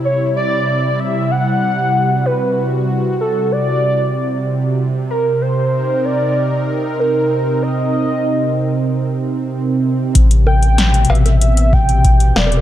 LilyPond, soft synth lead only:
\new Staff \with { instrumentName = "Soft synth lead" } { \time 4/4 \key c \major \tempo 4 = 95 cis''8 d''4 e''8 fis''4. b'8~ | b'8 r8 a'8 d''2 r8 | bes'8 c''4 d''4 r8 bes'4 | ees''2 r2 |
r8 g''4 e''8 e''8 g''4 d''8 | }